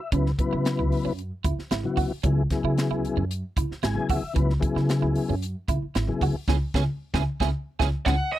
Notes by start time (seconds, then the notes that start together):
Already playing: E5
0.12 C#2 C#3 F#3 B3 C#4 E4 B4, kick, closed hi-hat
0.26 snare
0.38 C#3 F#3 B3 E4 B4, muted upright bass stroke, kick, closed hi-hat
0.53 C#3 E4
0.65 snare, closed hi-hat
0.79 C#2 E4
0.92 open hi-hat
1.05 F#2 C#4
1.19 closed hi-hat
1.44 C#2 E4, kick, closed hi-hat
1.58 muted upright bass stroke, snare
1.71 G#1 E4, snare, closed hi-hat
1.83 C#3 F#3 B3 E4 F#4, muted upright bass stroke
1.97 C#2 F#4, kick, open hi-hat
2.11 muted upright bass stroke
2.23 C#2 C#3 F#3 B3 C#4 E4 G#4, kick, closed hi-hat
2.50 C#3 F#3 B3 E4 G#4, muted upright bass stroke, kick, snare, closed hi-hat
2.64 C#3 E4
2.78 snare, closed hi-hat
2.90 C#2 E4
3.05 closed hi-hat
3.17 F#2 C#4
3.31 closed hi-hat
3.57 C#2 E4, kick, closed hi-hat
3.70 muted upright bass stroke, snare
3.83 G#1 E4 G#5, snare, closed hi-hat
3.94 C#3 F#3 B3 E4 G#4, muted upright bass stroke
4.09 C#2 F#4 E5, kick, open hi-hat
4.23 muted upright bass stroke
4.34 C#2 C#3 F#3 B3 C#4 E4 B4, kick, closed hi-hat
4.50 snare
4.60 C#3 F#3 B3 E4 G#4, muted upright bass stroke, kick, closed hi-hat
4.76 C#3 E4, snare
4.89 snare, closed hi-hat
5.02 C#2 E4
5.15 open hi-hat
5.29 F#2 C#4
5.42 closed hi-hat
5.68 C#2 E4, kick, closed hi-hat
5.82 muted upright bass stroke
5.95 G#1 E4, snare, closed hi-hat
6.08 C#3 F#3 B3 E4 G#4, muted upright bass stroke
6.21 C#2 F#4, kick, open hi-hat
6.34 muted upright bass stroke
6.48 C#2 G#3 B3 C#4 E4 G#4, kick, snare
6.74 C#2 G#3 B3 C#4 E4 G#4, kick, snare
7.14 C#2 G#3 B3 C#4 E4 G#4, kick, snare
7.40 C#2 G#3 B3 C#4 E4 G#4, kick, snare
7.79 C#2 G#3 B3 C#4 E4 G#4, kick, snare
8.06 C#2 G#3 B3 C#4 E4 G#4 F#5, kick, snare
8.32 E5